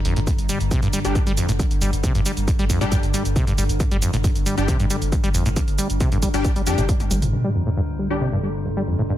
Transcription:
Already playing: synth drone G2 D3
0.05 sub bass G1, acid bass F2, open hi-hat
0.16 sub bass G1, acid bass A2, closed hi-hat
0.27 acid bass G2, kick, closed hi-hat, shaker
0.38 sub bass G1, closed hi-hat, shaker
0.49 acid bass G3, open hi-hat, shaker
0.60 sub bass G1, closed hi-hat, shaker
0.71 acid bass C3, kick, closed hi-hat, shaker
0.82 sub bass G1, acid bass G2, closed hi-hat, shaker
0.93 acid bass G3, open hi-hat, shaker
1.05 sub bass G1, synth stab G3 D4 G4, closed hi-hat, shaker
1.15 acid bass G2, kick, closed hi-hat, shaker
1.27 sub bass G1, acid bass G3, closed hi-hat, shaker
1.37 acid bass F2, open hi-hat, shaker
1.49 sub bass G1, acid bass A2, closed hi-hat, shaker
1.59 acid bass G2, kick, closed hi-hat, shaker
1.71 sub bass G1, closed hi-hat, shaker
1.81 sub bass G1, acid bass G3, open hi-hat, shaker
1.93 sub bass G1, closed hi-hat, shaker
2.04 acid bass C3, kick, closed hi-hat, shaker
2.15 sub bass G1, acid bass G2, closed hi-hat, shaker
2.26 acid bass G3, open hi-hat, shaker
2.37 sub bass G1, closed hi-hat, shaker
2.48 acid bass G2, kick, closed hi-hat, shaker
2.59 sub bass G1, acid bass G3, closed hi-hat, shaker
2.70 acid bass F2, kick, open hi-hat, shaker
2.81 sub bass G1, acid bass A2, synth stab G3 D4 G4, closed hi-hat, shaker
2.92 acid bass G2, kick, closed hi-hat, shaker
3.03 sub bass G1, closed hi-hat, shaker
3.14 acid bass G3, open hi-hat, shaker
3.25 sub bass G1, closed hi-hat, shaker
3.36 acid bass C3, kick, closed hi-hat, shaker
3.47 sub bass G1, acid bass G2, closed hi-hat, shaker
3.58 sub bass G1, acid bass G3, open hi-hat, shaker
3.69 sub bass G1, closed hi-hat, shaker
3.80 acid bass G2, kick, closed hi-hat, shaker
3.91 sub bass G1, acid bass G3, closed hi-hat, shaker
4.02 acid bass F2, open hi-hat, shaker
4.13 sub bass G1, acid bass A2, closed hi-hat, shaker
4.24 acid bass G2, kick, closed hi-hat, shaker
4.35 sub bass G1, closed hi-hat, shaker
4.46 acid bass G3, open hi-hat, shaker
4.58 sub bass G1, synth stab G3 D4 G4, closed hi-hat, shaker
4.68 acid bass C3, kick, closed hi-hat, shaker
4.80 sub bass G1, acid bass G2, closed hi-hat, shaker
4.90 acid bass G3, open hi-hat, shaker
5.02 sub bass G1, closed hi-hat, shaker
5.12 acid bass G2, kick, closed hi-hat, shaker
5.24 sub bass G1, acid bass G3, closed hi-hat, shaker
5.34 sub bass G1, acid bass F2, open hi-hat, shaker
5.46 sub bass G1, acid bass A2, closed hi-hat, shaker
5.56 acid bass G2, kick, closed hi-hat, shaker
5.68 sub bass G1, closed hi-hat, shaker
5.79 acid bass G3, open hi-hat, shaker
5.90 sub bass G1, closed hi-hat, shaker
6.00 acid bass C3, kick, closed hi-hat, shaker
6.12 sub bass G1, acid bass G2, closed hi-hat, shaker
6.22 acid bass G3, kick, open hi-hat, shaker
6.34 sub bass G1, synth stab G3 D4 G4, closed hi-hat, shaker
6.45 acid bass G2, kick, closed hi-hat, shaker
6.56 sub bass G1, acid bass G3, closed hi-hat, shaker
6.67 acid bass F2, synth stab G3 D4 G4, open hi-hat, shaker
6.78 sub bass G1, acid bass A2, closed hi-hat, shaker
6.89 acid bass G2, kick, closed hi-hat, shaker
7.00 sub bass G1, closed hi-hat, high tom, shaker
7.11 sub bass G1, acid bass G3, open hi-hat, mid tom, shaker
7.22 sub bass G1, closed hi-hat, mid tom, shaker
7.33 acid bass G2, synth drone G2 D3, sub drop
7.44 acid bass G3, closed hi-hat, shaker
7.55 acid bass F2
7.66 acid bass A2, closed hi-hat
7.77 acid bass G2, closed hi-hat
7.89 closed hi-hat, shaker
7.99 acid bass G3, closed hi-hat, shaker
8.10 synth stab G3 D4 G4
8.21 acid bass C3
8.32 acid bass G2, closed hi-hat
8.43 acid bass G3, shaker
8.55 closed hi-hat, shaker
8.65 acid bass G2, closed hi-hat, shaker
8.77 acid bass G3, closed hi-hat
8.87 acid bass F2, closed hi-hat, shaker
8.99 acid bass A2, closed hi-hat, shaker
9.09 acid bass G2, closed hi-hat, shaker

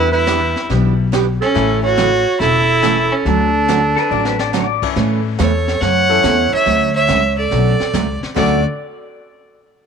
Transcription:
Already playing: upright bass E2, honky-tonk piano G3 B3 D4 E4 G4, fiddle E4, clarinet B4
0.12 fiddle E4, clarinet B4
0.27 steel-string acoustic guitar E3 B3 D4 G4, snare, hi-hat pedal
0.56 snare
0.69 upright bass B1, steel-string acoustic guitar E3 B3 D4 G4, brush sweep, snare
1.12 steel-string acoustic guitar E3 B3 D4 G4, snare, hi-hat pedal
1.41 fiddle C#4, clarinet A4, snare
1.55 upright bass A1, steel-string acoustic guitar C#3 E3 A3 C#4 A4, honky-tonk piano E3 A3 C#4 E4 A4, brush sweep, snare
1.83 fiddle F#4, clarinet C#5
1.97 steel-string acoustic guitar C#3 E3 A3 C#4 A4, snare, hi-hat pedal
2.40 upright bass E1, steel-string acoustic guitar C#3 E3 A3 C#4 A4, fiddle E4, clarinet A4, brush sweep, snare
2.82 steel-string acoustic guitar C#3 E3 A3 C#4 A4, honky-tonk piano E3 A3 C#4 E4 A4, snare, hi-hat pedal
3.12 fiddle C#4, clarinet A4
3.25 upright bass D2, steel-string acoustic guitar D3 F#3 A3 C#4 F#4, fiddle D4, clarinet A4, brush sweep, snare
3.68 steel-string acoustic guitar D3 F#3 A3 C#4 F#4, snare, hi-hat pedal
3.97 pedal steel guitar B4, snare
4.11 upright bass A1, steel-string acoustic guitar D3 F#3 A3 C#4 F#4, pedal steel guitar D5
4.25 pedal steel guitar B4, snare
4.39 pedal steel guitar D5, snare
4.53 steel-string acoustic guitar D3 F#3 A3 C#4 F#4, pedal steel guitar D5, snare, hi-hat pedal
4.82 honky-tonk piano E3 A3 C#4 E4 A4, kick, crash
4.96 upright bass A2, steel-string acoustic guitar C#3 E3 A3 C#4 A4, brush sweep, snare
5.39 upright bass E2, steel-string acoustic guitar C#3 E3 A3 C#4 A4, clarinet A4, fiddle C#5, snare, hi-hat pedal
5.68 snare
5.81 upright bass F#2, steel-string acoustic guitar C#3 E3 A3 C#4 A4, clarinet C#5, fiddle F#5, brush sweep, snare
6.09 honky-tonk piano E3 A3 C#4 E4 A4
6.23 upright bass E2, steel-string acoustic guitar C#3 E3 A3 C#4 A4, snare, hi-hat pedal
6.53 clarinet C#5, fiddle E5, muted upright bass stroke
6.65 upright bass D2, steel-string acoustic guitar D3 F#3 A3 C#4 F#4, brush sweep, snare
6.95 clarinet C#5, fiddle E5
7.07 upright bass C#2, steel-string acoustic guitar D3 F#3 A3 C#4 F#4, snare, hi-hat pedal
7.38 clarinet A4, fiddle D5
7.51 upright bass B1, steel-string acoustic guitar D3 F#3 A3 C#4 F#4, brush sweep, snare
7.80 muted upright bass stroke, snare
7.93 upright bass C#2, steel-string acoustic guitar D3 F#3 A3 C#4 F#4, snare, hi-hat pedal
8.23 muted upright bass stroke, snare
8.34 upright bass D2, steel-string acoustic guitar D3 F#3 A3 C#4 F#4, honky-tonk piano A3 C#4 D4 F#4, clarinet A4, fiddle D5, pedal steel guitar D5, kick, snare, crash

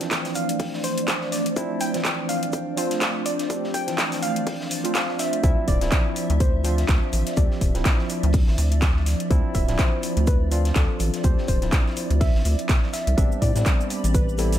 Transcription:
Already playing: analog synth pad A3 D4 C5 D5, synth pluck G5
0.00 tine electric piano E3 F3 C4 D4, snare, closed hi-hat
0.11 kick, snare, clap, closed hi-hat, shaker
0.25 snare, open hi-hat
0.34 synth pluck F5, open hi-hat, shaker
0.49 closed hi-hat
0.59 kick, closed hi-hat, open hi-hat
0.73 snare
0.84 synth pluck C5, open hi-hat, shaker
0.98 closed hi-hat
1.07 kick, snare, clap, closed hi-hat, shaker
1.21 snare
1.32 synth pluck D5, snare, open hi-hat, shaker
1.46 closed hi-hat
1.56 tine electric piano F3 C4 D4 E4, kick, closed hi-hat, shaker
1.80 synth pluck G5, open hi-hat, shaker
1.94 tine electric piano E3 F3 C4 D4, snare, closed hi-hat
2.05 kick, snare, clap, closed hi-hat, shaker
2.29 synth pluck F5, open hi-hat, shaker
2.43 closed hi-hat
2.53 kick, closed hi-hat, shaker
2.77 tine electric piano F3 C4 D4 F4, synth pluck C5, open hi-hat, shaker
2.90 snare, closed hi-hat
3.01 kick, snare, clap, closed hi-hat, shaker
3.26 synth pluck D5, open hi-hat, shaker
3.39 snare, closed hi-hat
3.50 tine electric piano F3 C4 D4 G4, kick, closed hi-hat, shaker
3.64 snare
3.74 synth pluck G5, kick, open hi-hat, shaker
3.87 tine electric piano E3 F3 C4 D4, snare, closed hi-hat
3.98 kick, snare, clap, closed hi-hat, shaker
4.12 snare, open hi-hat
4.23 synth pluck F5, open hi-hat, shaker
4.36 closed hi-hat
4.47 kick, closed hi-hat, open hi-hat
4.61 snare
4.71 open hi-hat, shaker
4.84 tine electric piano F3 C4 D4 F4, closed hi-hat
4.95 synth pluck F5, kick, snare, clap, closed hi-hat, shaker
5.08 snare
5.19 synth pluck E5, snare, open hi-hat, shaker
5.33 closed hi-hat
5.43 analog synth bass D2, tine electric piano F3 C4 D4 E4, analog synth pad F3 D5 E5, synth pluck E5, kick, closed hi-hat, shaker
5.68 analog synth bass D1, synth pluck D5, kick, open hi-hat, shaker
5.81 analog synth bass D1, tine electric piano F3 C4 D4 E4, snare, closed hi-hat
5.92 kick, snare, clap, closed hi-hat, shaker
6.16 open hi-hat, shaker
6.30 analog synth bass D2, closed hi-hat
6.40 synth pluck C5, kick, closed hi-hat, shaker
6.64 tine electric piano F3 C4 D4 F4, synth pluck C5, open hi-hat, shaker
6.78 snare, closed hi-hat
6.88 analog synth bass D2, kick, snare, clap, closed hi-hat, shaker
7.13 analog synth bass A1, open hi-hat, shaker
7.27 snare, closed hi-hat
7.37 analog synth bass D2, tine electric piano F3 C4 D4 G4, synth pluck D5, kick, closed hi-hat, shaker
7.51 snare
7.61 analog synth bass D1, kick, open hi-hat, shaker
7.74 analog synth bass D1, tine electric piano F3 C4 D4 E4, snare, closed hi-hat
7.85 kick, snare, clap, closed hi-hat, shaker
7.99 snare
8.10 open hi-hat, shaker
8.23 analog synth bass D2, closed hi-hat
8.33 kick, closed hi-hat, open hi-hat
8.47 analog synth bass A1, snare
8.58 analog synth bass D2, open hi-hat, shaker
8.71 closed hi-hat
8.82 kick, snare, clap, closed hi-hat, shaker
8.96 snare
9.06 snare, open hi-hat, shaker
9.20 closed hi-hat
9.30 analog synth bass D2, tine electric piano F3 C4 D4 E4, kick, closed hi-hat, shaker
9.55 analog synth bass D1, synth pluck E5, kick, open hi-hat, shaker
9.68 analog synth bass D1, tine electric piano F3 C4 D4 E4, snare, closed hi-hat
9.79 synth pluck C5, kick, snare, clap, closed hi-hat, shaker
10.03 open hi-hat, shaker
10.17 analog synth bass D2, closed hi-hat
10.27 synth pluck B4, kick, closed hi-hat, shaker
10.51 tine electric piano F3 C4 D4 F4, open hi-hat, shaker
10.65 snare, closed hi-hat
10.76 analog synth bass D2, synth pluck A4, kick, snare, clap, closed hi-hat, shaker
11.00 analog synth bass A1, open hi-hat, shaker
11.14 snare, closed hi-hat
11.24 analog synth bass D2, tine electric piano F3 C4 D4 G4, synth pluck C5, kick, closed hi-hat, shaker
11.38 snare
11.48 analog synth bass D1, synth pluck C5, kick, open hi-hat, shaker
11.61 analog synth bass D1, tine electric piano F3 C4 D4 E4, snare, closed hi-hat
11.72 kick, snare, clap, closed hi-hat, shaker
11.86 snare
11.96 open hi-hat, shaker
12.10 analog synth bass D2, closed hi-hat
12.21 synth pluck E5, kick, closed hi-hat, open hi-hat
12.35 analog synth bass A1, snare
12.45 analog synth bass D2, open hi-hat, shaker
12.59 closed hi-hat
12.69 kick, snare, clap, closed hi-hat, shaker
12.83 snare
12.93 synth pluck E5, snare, open hi-hat, shaker
13.07 analog synth bass C2, closed hi-hat
13.17 analog synth bass A1, tine electric piano G3 B3 C4 D4, analog synth pad G4 B5, synth pluck E5, kick, closed hi-hat, cabasa, shaker
13.32 cabasa
13.42 analog synth bass A2, synth pluck D5, kick, open hi-hat, shaker
13.55 analog synth bass A2, tine electric piano G3 B3 C4 D4, snare, closed hi-hat, cabasa
13.65 kick, snare, clap, closed hi-hat, cabasa, shaker
13.80 cabasa
13.90 open hi-hat, shaker
14.04 analog synth bass A1, closed hi-hat, cabasa
14.14 synth pluck B4, kick, closed hi-hat, cabasa, shaker
14.29 cabasa
14.38 tine electric piano G3 B3 C4 E4, synth pluck A4, open hi-hat, shaker
14.52 snare, closed hi-hat, cabasa

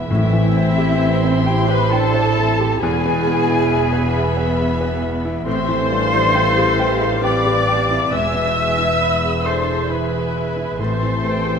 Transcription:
Already playing: french horn section E3, grand piano E4 B4 E5, violin section E5
0.09 double bass section A1, timpani A2, grand piano A2, cello section A3, clarinet C4, viola section E4, french horn section C5, violin section E5 C6, flute E5
0.33 grand piano E3
0.55 cello section C4, grand piano C4
0.78 grand piano G4
1.01 grand piano E5
1.23 grand piano C5
1.44 clarinet E4, viola section G4, flute G5, violin section G5, grand piano G5
1.67 clarinet G4, viola section B4, grand piano C5, flute B5, violin section B5
1.91 cello section D4, clarinet E4, viola section A4, grand piano G5, flute A5, violin section A5
2.15 grand piano C5
2.36 cello section C4, grand piano E5
2.60 grand piano G4
2.80 double bass section E1, grand piano E2, french horn section E3 B4, cello section B3, clarinet E4, viola section G#4, violin section E5 G#5 B5, flute G#5
3.05 grand piano B2
3.27 grand piano B3
3.49 grand piano E4
3.71 grand piano E5
3.93 grand piano B4
4.16 grand piano E5
4.37 grand piano B4
4.59 grand piano E5
4.81 grand piano B4
5.02 grand piano E5
5.25 grand piano E4
5.46 double bass section A1, grand piano A2, cello section C4, french horn section G4, clarinet A4, viola section C5, violin section E5 C6, flute C6
5.68 grand piano E3
5.90 grand piano G3, cello section D4, violin section F5
6.13 grand piano E3
6.35 cello section E4, grand piano G5
6.57 grand piano G4
6.79 grand piano G5
7.01 grand piano G4
7.22 cello section C4, clarinet B4, viola section D5, grand piano G5, violin section B5 D6, flute D6
7.46 grand piano G4
7.68 grand piano G5, violin section A5
7.90 grand piano E4
8.11 double bass section E1, grand piano E2, french horn section E3 E4, cello section G#3, clarinet B4, viola section E5, violin section E5 G#5 E6, flute E6
8.35 grand piano B2
8.57 grand piano G#3, violin section G#5
8.78 grand piano E4
9.00 cello section B3, grand piano E5, violin section B5
9.23 grand piano G#4
9.44 cello section D4, clarinet A4, viola section C5, grand piano E5, violin section A5 C6, flute C6
9.68 grand piano G#4
9.89 cello section E4, clarinet G#4, viola section B4, grand piano E5, violin section G#5 B5, flute B5
10.13 grand piano G#4
10.35 grand piano E5, violin section G#5
10.57 grand piano E4
10.79 double bass section A1, timpani A2, grand piano A2, cello section C4, french horn section G4, clarinet A4, viola section C5, violin section E5 A5 C6, flute C6
11.02 grand piano E3
11.24 grand piano A3, violin section G5
11.46 grand piano G4

